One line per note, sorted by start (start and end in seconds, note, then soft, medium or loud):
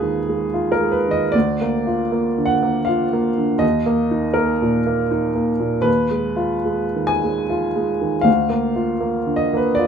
0.00 1.30 D#2 medium
0.00 0.44 D#3 soft
0.00 0.29 G#3 soft
0.00 0.54 F4 soft
0.00 0.72 G#4 medium
0.00 0.92 B4 medium
0.29 0.71 G#3 soft
0.54 0.97 F4 soft
0.72 0.93 A#4 medium
0.81 1.24 G#3 soft
0.92 1.13 B4 medium
1.08 1.35 D#3 soft
1.08 1.33 D#5 medium
1.32 3.59 D2 medium
1.32 2.48 D5 medium
1.61 2.02 A#3 soft
1.87 2.27 F4 soft
2.12 2.52 A#3 soft
2.38 2.78 D3 soft
2.46 2.85 F#5 medium
2.62 3.03 A#3 soft
2.85 3.28 F4 medium
2.85 3.61 F5 medium
3.13 3.53 A#3 soft
3.38 3.63 D3 soft
3.58 5.80 D#2 medium
3.58 4.36 D#5 medium
3.86 4.27 A#3 medium
4.11 4.52 D#4 soft
4.34 4.78 A#3 soft
4.34 5.48 A#4 medium
4.62 5.03 A#2 soft
4.86 5.27 A#3 soft
5.11 5.52 D#4 medium
5.35 5.76 A#3 soft
5.60 5.86 A#2 soft
5.81 8.20 D#2 medium
5.81 7.10 B4 medium
6.11 6.55 G#3 soft
6.36 6.85 F4 soft
6.65 7.14 G#3 soft
6.96 7.41 D#3 soft
7.07 8.24 G#5 medium
7.24 7.66 G#3 soft
7.50 7.91 F4 medium
7.76 8.16 G#3 soft
8.01 8.27 D#3 soft
8.21 9.87 D2 medium
8.21 9.37 F5 medium
8.50 8.91 A#3 soft
8.75 9.17 F4 soft
9.00 9.42 A#3 soft
9.27 9.67 D3 soft
9.36 9.57 D#5 medium
9.54 9.87 A#3 soft
9.54 9.77 B4 medium
9.75 9.87 F4 soft
9.75 9.87 D5 medium